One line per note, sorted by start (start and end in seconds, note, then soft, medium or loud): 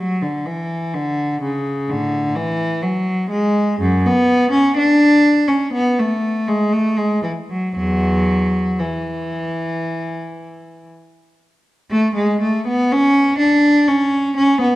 0.00 0.22 F#3 medium
0.22 0.46 D3 medium
0.46 0.94 E3 medium
0.94 1.42 D3 medium
1.42 1.88 C#3 medium
1.89 2.33 A2 medium
1.89 2.36 D3 medium
2.35 2.83 E3 loud
2.82 3.31 F#3 medium
3.30 3.80 G#3 medium
3.80 4.05 F#2 loud
4.06 4.54 B3 loud
4.52 4.76 C#4 loud
4.77 5.47 D4 loud
5.48 5.73 C#4 loud
5.73 5.98 B3 loud
5.99 6.49 A3 medium
6.48 6.73 G#3 medium
6.72 6.98 A3 medium
6.97 7.24 G#3 medium
7.23 7.31 E3 medium
7.50 7.74 F#3 medium
7.75 8.77 E2 medium
7.75 8.78 F#3 loud
8.79 10.87 E3 medium
11.91 12.14 A3 loud
12.15 12.40 G#3 medium
12.41 12.66 A3 medium
12.67 12.91 B3 loud
12.91 13.40 C#4 loud
13.39 13.87 D4 loud
13.88 14.35 C#4 medium
14.37 14.60 C#4 loud
14.61 14.76 B3 medium